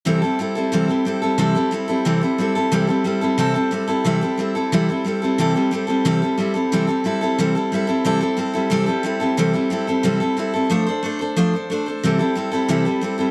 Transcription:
X:1
M:4/4
L:1/8
Q:1/4=180
K:C
V:1 name="Steel-string acoustic guitar"
[C,E,G,CEA] [G,CEA] [G,CEA] [G,CEA] [C,E,G,CEA] [G,CEA] [G,CEA] [G,CEA] | [C,E,G,CEA] [G,CEA] [G,CEA] [G,CEA] [C,E,G,CEA] [G,CEA] [G,CEA] [G,CEA] | [C,E,G,CEA] [G,CEA] [G,CEA] [G,CEA] [C,E,G,CEA] [G,CEA] [G,CEA] [G,CEA] | [C,E,G,CEA] [G,CEA] [G,CEA] [G,CEA] [C,E,G,CEA] [G,CEA] [G,CEA] [G,CEA] |
[C,E,G,CEA] [G,CEA] [G,CEA] [G,CEA] [C,E,G,CEA] [G,CEA] [G,CEA] [G,CEA] | [C,E,G,CEA] [G,CEA] [G,CEA] [G,CEA] [C,E,G,CEA] [G,CEA] [G,CEA] [G,CEA] | [C,E,G,CEA] [G,CEA] [G,CEA] [G,CEA] [C,E,G,CEA] [G,CEA] [G,CEA] [G,CEA] | [C,E,G,CEA] [G,CEA] [G,CEA] [G,CEA] [C,E,G,CEA] [G,CEA] [G,CEA] [G,CEA] |
[F,A,DAc] [DAc] [A,DAc] [DAc] [F,A,DAc] [DAc] [A,DAc] [DAc] | [C,E,G,CEA] [G,CEA] [G,CEA] [G,CEA] [C,E,G,CEA] [G,CEA] [G,CEA] [G,CEA] |]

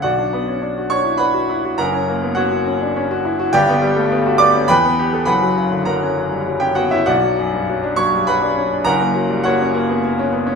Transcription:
X:1
M:3/4
L:1/16
Q:1/4=102
K:Bm
V:1 name="Grand piano"
[Fdf]6 [cc']2 [Bfb]4 | [^Af^a]4 [Fcf]6 z2 | [Gdg]6 [dd']2 [Bgb]4 | [Bfb]4 [^Af^a]4- [Afa] [Gg] [Ff] [Ee] |
[Fdf]6 [cc']2 [Bfb]4 | [^Af^a]4 [Fcf]6 z2 |]
V:2 name="Grand piano"
B,,, D B, C D F D E D F E F | [F,,,F,,] C ^A, B, C F C D C F E F | [G,,,G,,] B, G, A, B, F B, C E,, B, G A | [F,,,F,,] F, C, D, F, C F, G, F, C B, C |
B,,, F, F,, G,, F, D F, G, F, D C D | [F,,,F,,] ^A, F, G, A, C A, B, A, C B, C |]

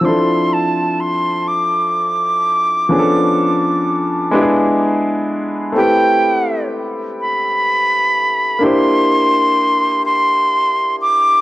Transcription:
X:1
M:6/8
L:1/8
Q:3/8=42
K:Am
V:1 name="Flute"
c' a c' d'3- | d'4 z2 | g2 z b3 | c'3 c'2 d' |]
V:2 name="Grand piano"
[F,CDEA]6 | [F,B,^CD^GA]3 [^G,B,DE=G^G]3 | [A,CEGB]6 | [_B,DEGc]6 |]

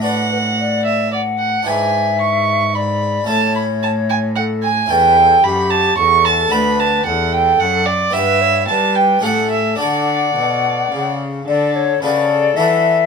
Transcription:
X:1
M:3/4
L:1/8
Q:1/4=111
K:A
V:1 name="Violin"
f3 e d f | g2 c'2 b2 | a b a g f g | [K:D] g2 b a c' a |
b a f g f d | e2 a g f e | d4- d z | A2 B A3 |]
V:2 name="Flute"
d B d2 f2 | e4 d2 | c4 A z | [K:D] B A G2 A2 |
B2 A4 | B c B2 A2 | f4- f z | d c d2 e2 |]
V:3 name="Harpsichord"
[DFB]6 | [DEB]6 | [CEA]6 | [K:D] [CEA]6 |
[DFA]6 | [B,GB]4 [CGA]2 | [DFA]6 | z2 [DFA]2 [DFA]2 |]
V:4 name="Harpsichord" clef=bass
A,,6 | G,,6 | A,,6 | [K:D] E,,2 F,,2 E,,2 |
D,,2 E,,2 F,,2 | G,,2 G,2 A,,2 | D,2 B,,2 C,2 | D,2 C,2 E,2 |]
V:5 name="Cello" clef=bass
A,,6 | G,,6 | A,,6 | [K:D] E,,2 F,,2 E,,2 |
D,,2 E,,2 F,,2 | G,,2 G,2 A,,2 | D,2 B,,2 C,2 | D,2 C,2 E,2 |]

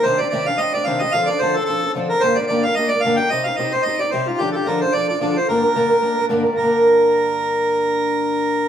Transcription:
X:1
M:4/4
L:1/16
Q:"Swing" 1/4=221
K:Gm
V:1 name="Accordion"
c2 d2 d2 f2 e2 d2 f2 e2 | f2 d2 c2 A2 A4 z2 B2 | c2 d2 d2 f2 e2 d2 f2 g2 | e2 f2 e2 c2 e2 d2 c2 F2 |
G3/2 A/2 G2 B2 c2 d2 d2 d2 c2 | B12 z4 | B16- | B16 |]
V:2 name="Twelve-string acoustic guitar"
[C,E,G,CDG]2 [G,CDG]2 [C,E,G,CDG]2 [G,CDG]2 [G,CDG]2 [G,CDG]2 [C,E,G,CDG]2 [G,CDG]2 | [D,F,CDA]2 [CDA]2 [D,F,CDA]2 [CDA]2 [F,CDA]2 [CDA]2 [D,F,CDA]2 [CDA]2 | [G,,D,G,B,DG]2 [G,B,DG]2 [G,,D,G,B,DG]2 [G,B,DG]2 [G,B,DG]2 [G,B,DG]2 [G,,D,G,B,DG]2 [G,B,DG]2 | [C,G,CEG]2 [CEG]2 [C,G,CEG]2 [CEG]2 [G,CEG]2 [CEG]2 [C,G,CEG]2 [CEG]2 |
[D,F,DFA]2 [DFA]2 [D,F,DFA]2 [DFA]2 [F,DFA]2 [DFA]2 [D,F,DFA]2 [DFA]2 | [G,,D,G,B,DB]2 [G,B,DB]2 [G,,D,G,B,DB]2 [G,B,DB]2 [G,B,DB]2 [G,B,DB]2 [G,,D,G,B,DB]2 [G,B,DB]2 | [G,,D,G,B,DB]16- | [G,,D,G,B,DB]16 |]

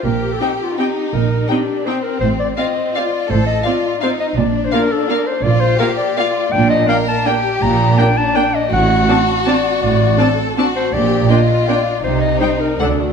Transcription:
X:1
M:3/4
L:1/16
Q:1/4=164
K:Bb
V:1 name="Violin section"
z4 g4 g4 | z4 g4 g4 | z4 f4 f4 | z4 f4 f4 |
z4 f4 f4 | z4 f4 f4 | [K:Gm] z4 g4 g4 | z4 g4 g4 |
z4 a4 a4 | z4 a4 a4 | z4 g4 g4 | z4 g4 ^f4 |]
V:2 name="Clarinet"
B3 A G2 F2 G4 | B4 G4 c2 B2 | c2 d2 e4 d4 | c2 e2 d4 c2 e2 |
d3 c B2 A2 B2 c2 | d2 c2 B2 d2 d4 | [K:Gm] g2 e2 f2 a2 g4 | b4 g2 a2 g2 e2 |
^f4- f z3 d4 | d6 z4 c2 | d4 e4 d4 | c2 e2 c2 B2 A2 ^F2 |]
V:3 name="Violin section"
G8 E4- | E4 D4 C4- | C4 C4 F4 | A4 F4 E4 |
D12 | F4 G4 F4 | [K:Gm] D4 B4 G4- | G4 D8 |
^F12- | ^F4 A4 F4 | G4 F8 | E8 D4 |]
V:4 name="Viola section"
z4 [CE]4 [CE]4 | z4 [CE]4 [CE]4 | z4 [CF]4 [CF]4 | z4 [CF]4 [CF]4 |
z4 [B,F]4 [B,F]4 | z4 [B,F]4 [B,F]4 | [K:Gm] z4 [B,D]4 [B,D]4 | z4 [B,D]4 [B,D]4 |
z4 [CD]4 [CD]4 | z4 [CD]4 [CD]4 | z4 [B,D]4 [B,D]4 | z4 [G,E]4 [D,D]4 |]
V:5 name="Cello section" clef=bass
B,,4 z8 | B,,4 z8 | A,,4 z8 | A,,4 z8 |
B,,4 z8 | B,,4 z8 | [K:Gm] B,,4 z8 | B,,4 z8 |
A,,4 z8 | A,,4 z8 | B,,4 z8 | C,4 z4 D,,4 |]
V:6 name="Double bass section" clef=bass
B,,,4 z8 | B,,,4 z8 | A,,,4 z8 | A,,,4 z8 |
B,,,4 z8 | B,,,4 z8 | [K:Gm] B,,,4 z8 | B,,,4 z8 |
A,,,4 z8 | A,,,4 z8 | B,,,4 z8 | C,,4 z4 D,,4 |]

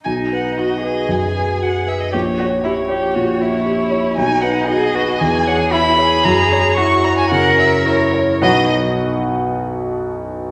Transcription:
X:1
M:4/4
L:1/16
Q:1/4=115
K:B
V:1 name="Violin"
g2 f2 d4 g4 f2 e d | c4 c12 | g2 f2 d4 g2 f g b4 | a4 c'2 a g f2 e2 c4 |
d2 z12 z2 |]
V:2 name="Grand piano"
B,,,2 B2 F2 B2 F,,2 B2 F2 B2 | A,,,2 c2 =G2 c2 A,,2 c2 G2 c2 | B,,,2 B2 F2 B2 E,,2 c2 E2 c2 | F,,2 c2 E2 c2 C,2 c2 E2 c2 |
[B,,,B,,DFBf]2 z12 z2 |]
V:3 name="Cello"
D4 F2 G8- G2 | =G2 F2 E2 G2 F2 E6 | D4 G2 F2 G4 E2 G2- | G4 F4 A4 A2 z2 |
F,2 z12 z2 |]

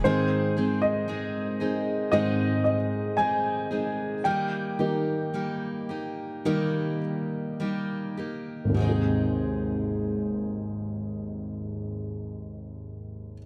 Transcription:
X:1
M:4/4
L:1/16
Q:1/4=53
K:Ab
V:1 name="Steel-string acoustic guitar"
[A,,E,A,CEA]2 [A,CEA]2 [A,CEA]2 [A,CEA]2 [A,,E,A,CEA]4 [A,CEA]2 [A,CEA]2 | [E,G,B,EG]2 [B,EG]2 [G,B,EG]2 [B,EG]2 [E,G,B,EG]4 [G,B,EG]2 [B,EG]2 | [A,,E,A,CEA]16 |]
V:2 name="Upright piano"
c3 e4- e e2 e2 a4 | g12 z4 | z16 |]
V:3 name="Upright piano" clef=bass
[A,,E,C]8 [A,,E,C]2 z6 | z2 [E,G,B,]6 [E,G,B,]2 z6 | [A,,,E,,C,A,EA]16 |]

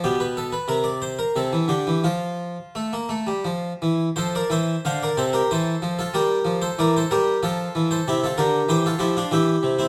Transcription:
X:1
M:3/4
L:1/16
Q:1/4=92
K:F
V:1 name="Harpsichord"
G =B A B _B d c B A2 G2 | F8 z4 | [Ac] [Bd] [ce]2 [cf] [Bd] [Ac] [GB] [Ac]3 [FA] | [GB]3 [Ac] [Bd] [Ac] [GB]2 [FA]3 [Ac] |
[EG] [FA] [GB]2 [Gc] [FA] [EG] [DF] [EG]3 [CE] |]
V:2 name="Harpsichord" clef=bass
=B,,4 C,4 C, E, D, E, | F,4 A, B, A, G, F,2 E,2 | F,2 E,2 D,2 C,2 E,2 F,2 | G,2 F,2 E,2 G,2 F,2 E,2 |
C,2 D,2 E,2 F,2 E,2 C,2 |]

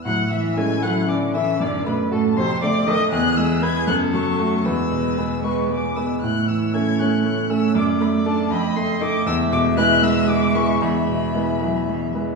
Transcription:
X:1
M:6/8
L:1/8
Q:3/8=78
K:A
V:1 name="Violin"
f' e' g' f' d' e' | d' b a =c' d' _e' | f' e' g' f' c'2 | e'3 c' d' e' |
f' e' g' f'2 e' | d' b a b =c' d' | e' d' f' e' d' c' | b4- b z |]
V:2 name="Violin"
f e g f d e | d B A =c d _e | G3 A3 | B3 B2 z |
c6 | d3 _e3 | e6- | e4- e z |]
V:3 name="Grand piano"
A,, E, [CEA] [CEA] C [CEA] | F,, A, [FA] =F,, A, [_EA] | E,, G, [B,B] F,, F, [A,F] | E,, B,, [G,B,B] [G,B,B] G, [G,B,B] |
A,, E, [A,CA] [A,CA] A, [A,CA] | F,, A, [DA] =F,, A, [_EA] | E,, B,, [G,EB] [G,EB] G, [G,EB] | E,, B,, [G,EB] [G,EB] G, [G,EB] |]
V:4 name="Cello" clef=bass
F, E, G, F, D, E, | D, B,, A,, =C, D, _E, | E,3 F,3 | G,3 G,2 z |
A,6- | A,6 | G,6- | G,3 F, E, G, |]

